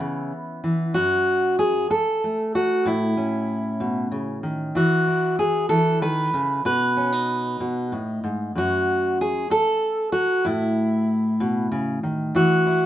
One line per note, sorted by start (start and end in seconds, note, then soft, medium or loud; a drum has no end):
0.00 0.32 C#3 medium
0.00 0.62 E3 medium
0.00 0.91 B3 soft
0.00 0.94 E4 medium
0.64 0.95 E3 medium
0.94 1.89 F#2 medium
0.94 1.58 F#4 medium
1.59 1.90 G#4 medium
1.90 2.53 A4 loud
1.90 muted steel-string acoustic guitar stroke medium
2.24 3.17 A3 soft
2.55 2.86 F#4 medium
2.85 4.71 A2 medium
2.85 4.20 E4 medium
3.17 4.71 C#4 soft
3.80 4.11 B2 medium
4.12 4.43 C#3 medium
4.43 4.75 D#3 medium
4.75 5.69 E3 medium
4.75 5.39 F#4 medium
5.08 6.62 E4 soft
5.39 5.69 G#4 medium
5.69 6.01 E3 medium
5.69 6.01 A4 medium
6.02 6.33 D#3 medium
6.02 6.64 B4 loud
6.34 6.65 C#3 medium
6.65 7.59 B2 medium
6.65 8.00 B4 medium
6.97 7.12 C#4 soft
7.12 8.55 D#4 soft
7.60 7.92 B2 medium
7.92 8.23 A2 medium
8.24 8.55 G#2 medium
8.55 9.49 F#2 medium
8.55 9.20 F#4 medium
9.21 9.51 G#4 medium
9.50 10.12 A4 loud
9.50 muted steel-string acoustic guitar stroke medium
10.12 10.44 F#4 medium
10.45 12.31 A2 medium
10.45 11.79 E4 medium
11.40 11.71 B2 medium
11.71 12.03 C#3 medium
12.03 12.35 D#3 medium
12.35 12.86 E3 medium
12.35 12.86 F#4 medium
12.67 12.86 E4 soft